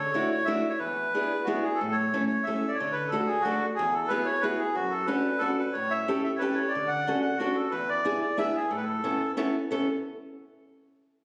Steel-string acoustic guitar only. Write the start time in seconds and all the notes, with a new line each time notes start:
0.14 A3 D4 E4 F#4
0.47 A3 D4 E4 F#4
0.80 E2
1.14 B3 D4 E4 G#4
1.47 B3 D4 E4 G#4
1.81 A2
2.14 A3 C#4 E4 A4
2.47 A3 C#4 E4 A4
2.80 D3
3.12 A3 D4 F#4 A4
3.45 A3 D4 F#4 A4
3.79 E2
4.10 B3 E4 F#4 G#4
4.43 B3 E4 F#4 G#4
4.75 F#2
5.08 C#4 D4 F#4 A4
5.41 C#4 D4 F#4 A4
5.75 A2
6.08 C#4 E4 G4 A4
6.41 C#4 E4 G4 A4
6.75 D3
7.07 C#4 D4 F#4 A4
7.40 C#4 D4 F#4 A4
7.72 E2
8.05 B3 D4 E4 G#4
8.37 B3 D4 E4 G#4
8.71 A2
9.04 B3 C#4 E4 A4
9.37 B3 C#4 E4 A4
9.71 B3 C#4 E4 A4